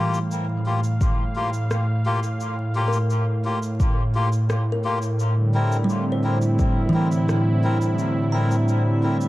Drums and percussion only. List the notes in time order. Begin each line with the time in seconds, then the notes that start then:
0.14 shaker
0.31 shaker
0.84 shaker
1.01 kick, shaker
1.54 shaker
1.71 cross-stick, shaker
2.23 shaker
2.40 shaker
2.93 shaker
3.10 shaker
3.63 shaker
3.80 kick, shaker
4.32 shaker
4.50 cross-stick, shaker
5.02 shaker
5.20 shaker
5.72 shaker
5.89 shaker
6.42 shaker
6.59 kick, shaker
7.12 shaker
7.29 cross-stick, shaker
7.81 shaker
7.99 shaker
8.51 shaker
8.69 shaker
9.21 shaker